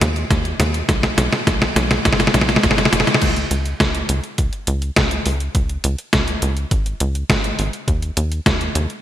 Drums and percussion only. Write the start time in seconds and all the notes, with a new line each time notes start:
0.01 snare, closed hi-hat
0.16 closed hi-hat
0.30 kick, snare, closed hi-hat
0.45 closed hi-hat
0.60 snare, closed hi-hat
0.74 closed hi-hat
0.89 kick, snare, closed hi-hat
1.03 snare, closed hi-hat
1.18 snare, closed hi-hat
1.33 snare, closed hi-hat
1.47 kick, snare, closed hi-hat
1.62 snare, closed hi-hat
1.76 snare, closed hi-hat
1.91 snare, closed hi-hat
2.05 kick, snare, closed hi-hat
2.13 snare
2.20 snare, closed hi-hat
2.27 snare
2.34 snare, closed hi-hat
2.41 snare
2.49 snare, closed hi-hat
2.56 snare
2.63 kick, snare, closed hi-hat
2.71 snare
2.78 snare, closed hi-hat
2.85 snare
2.93 snare, closed hi-hat
3.00 snare
3.07 snare, closed hi-hat
3.14 snare
3.22 kick, closed hi-hat, crash
3.36 closed hi-hat
3.51 closed hi-hat
3.66 closed hi-hat
3.80 kick, snare, closed hi-hat
3.95 closed hi-hat
4.09 closed hi-hat
4.24 closed hi-hat
4.38 kick, closed hi-hat
4.53 closed hi-hat
4.67 closed hi-hat
4.82 closed hi-hat
4.96 kick, snare, closed hi-hat
5.11 closed hi-hat
5.26 open hi-hat
5.40 closed hi-hat
5.55 kick, closed hi-hat
5.69 closed hi-hat
5.84 closed hi-hat
5.98 closed hi-hat
6.13 kick, snare, closed hi-hat
6.28 closed hi-hat
6.42 closed hi-hat
6.57 closed hi-hat
6.71 kick, closed hi-hat
6.86 closed hi-hat
7.00 closed hi-hat
7.15 closed hi-hat
7.30 kick, snare, closed hi-hat
7.44 closed hi-hat
7.59 open hi-hat
7.73 closed hi-hat
7.88 kick, closed hi-hat
8.02 closed hi-hat
8.17 closed hi-hat
8.32 closed hi-hat
8.46 kick, snare, closed hi-hat
8.61 closed hi-hat
8.75 closed hi-hat
8.90 closed hi-hat